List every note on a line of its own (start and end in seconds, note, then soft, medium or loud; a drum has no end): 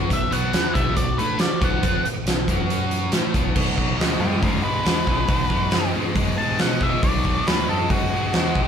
0.10 0.30 B1 medium
0.10 0.27 B2 medium
0.10 0.27 F#3 medium
0.10 0.31 B4 medium
0.10 0.32 E5 medium
0.10 kick medium
0.10 closed hi-hat medium
0.31 0.52 B1 medium
0.31 0.51 B2 medium
0.31 0.52 F#3 medium
0.31 0.51 B3 medium
0.31 0.72 B4 medium
0.31 0.74 F#5 loud
0.31 closed hi-hat medium
0.52 0.74 E2 medium
0.52 0.73 E3 medium
0.52 0.73 B3 loud
0.52 0.74 E4 medium
0.52 snare loud
0.52 closed hi-hat medium
0.74 0.95 B1 medium
0.74 0.95 B2 medium
0.74 0.95 F#3 medium
0.74 0.96 B3 loud
0.74 0.96 G4 medium
0.74 0.95 E5 medium
0.74 kick loud
0.74 closed hi-hat medium
0.97 1.16 B1 medium
0.97 1.14 B2 medium
0.97 1.14 F#3 medium
0.97 1.18 F#4 medium
0.97 1.17 D5 medium
0.97 kick medium
0.97 closed hi-hat medium
1.18 1.38 A2 medium
1.18 1.39 A3 medium
1.18 1.39 D4 medium
1.18 1.39 E4 medium
1.18 1.39 A4 loud
1.18 1.39 B4 medium
1.18 closed hi-hat medium
1.39 1.61 D5 medium
1.39 muted picked electric bass stroke soft
1.39 muted distorted electric guitar stroke soft
1.39 snare loud
1.39 closed hi-hat medium
1.43 1.61 F#4 medium
1.61 1.81 B1 medium
1.61 1.83 B2 medium
1.61 1.83 F#3 medium
1.61 1.83 B3 medium
1.61 2.03 B4 medium
1.61 2.05 F#5 medium
1.61 kick loud
1.61 closed hi-hat medium
1.83 2.03 F2 medium
1.83 2.04 F3 medium
1.83 2.04 C4 loud
1.83 2.04 F4 loud
1.83 kick loud
1.83 closed hi-hat medium
2.06 closed hi-hat medium
2.25 2.45 B1 medium
2.25 2.44 B2 medium
2.25 2.44 F#3 medium
2.25 snare loud
2.25 closed hi-hat medium
2.47 3.08 F#2 medium
2.47 3.13 F#3 medium
2.47 3.12 C#4 medium
2.47 3.13 F#4 loud
2.47 kick loud
2.47 closed hi-hat medium
2.70 closed hi-hat medium
2.91 closed hi-hat medium
3.12 3.33 A2 medium
3.12 3.33 A3 medium
3.12 3.34 E4 medium
3.12 3.34 A4 medium
3.12 snare loud
3.12 closed hi-hat medium
3.34 3.54 B1 medium
3.34 3.55 B2 medium
3.34 3.56 F#3 medium
3.34 3.56 B3 medium
3.34 kick loud
3.34 closed hi-hat medium
3.56 3.91 B1 medium
3.56 3.75 B2 medium
3.56 3.75 F#3 medium
3.56 kick loud
3.56 crash loud
3.76 3.96 B2 medium
3.76 3.97 F#3 medium
3.76 kick medium
3.97 4.16 D2 medium
3.97 4.18 B2 medium
3.97 4.18 G#3 medium
3.97 snare loud
3.97 open hi-hat medium
4.19 4.37 F#2 medium
4.19 4.40 B2 medium
4.19 4.40 G#3 medium
4.19 4.43 D4 medium
4.19 4.41 B4 medium
4.42 4.60 F#2 medium
4.42 4.62 B2 medium
4.42 4.62 G#3 medium
4.42 4.62 F#4 medium
4.42 4.63 D5 medium
4.42 kick loud
4.42 open hi-hat soft
4.62 4.80 G2 medium
4.62 4.83 B2 medium
4.62 4.83 G#3 medium
4.62 5.90 B4 medium
4.84 5.04 E2 medium
4.84 5.05 B2 medium
4.84 5.04 G#3 medium
4.84 snare loud
4.84 open hi-hat medium
5.06 5.25 B1 medium
5.06 5.27 B2 medium
5.06 5.27 G#3 medium
5.06 kick medium
5.28 5.47 B1 medium
5.28 5.48 B2 medium
5.28 5.49 F#3 medium
5.28 kick loud
5.28 open hi-hat medium
5.49 5.68 F#2 medium
5.49 5.70 B2 medium
5.49 5.71 F#3 medium
5.49 kick medium
5.71 5.90 F#2 medium
5.71 5.92 B2 medium
5.71 5.92 G#3 medium
5.71 snare loud
5.71 open hi-hat medium
5.94 6.12 G2 medium
5.94 6.14 B2 medium
5.94 6.14 G#3 medium
6.15 6.33 F#2 medium
6.15 6.36 B2 medium
6.15 6.36 G#3 medium
6.15 kick loud
6.15 open hi-hat medium
6.38 6.56 G2 medium
6.38 6.58 B2 medium
6.38 6.58 G#3 medium
6.38 6.59 A5 medium
6.59 6.80 B2 medium
6.59 6.96 B2 medium
6.59 6.80 G#3 medium
6.59 6.82 F#5 medium
6.59 snare loud
6.59 open hi-hat medium
6.81 7.01 B2 medium
6.81 7.02 G#3 medium
6.81 7.03 E5 medium
6.81 kick medium
7.03 7.39 B1 medium
7.03 7.23 B2 medium
7.03 7.23 F#3 medium
7.03 7.46 D5 medium
7.03 kick loud
7.03 open hi-hat medium
7.25 7.45 B2 medium
7.25 7.45 F#3 medium
7.25 kick medium
7.47 7.65 D2 medium
7.47 7.67 B2 medium
7.47 7.67 G#3 medium
7.47 7.68 B4 medium
7.47 snare loud
7.47 open hi-hat medium
7.68 7.87 F#2 medium
7.68 7.88 B2 medium
7.68 7.88 G#3 medium
7.68 7.90 A4 medium
7.89 8.08 F#2 medium
7.89 8.09 B2 medium
7.89 8.10 G#3 loud
7.89 8.68 F#4 loud
7.89 kick loud
7.89 open hi-hat soft
8.13 8.30 G2 medium
8.13 8.32 B2 medium
8.13 8.32 G#3 medium
8.33 8.53 E2 medium
8.33 8.53 B2 medium
8.33 8.54 G#3 medium
8.33 snare loud
8.33 open hi-hat soft
8.55 8.68 B1 medium
8.55 8.68 B2 medium
8.55 8.68 G#3 medium
8.55 kick medium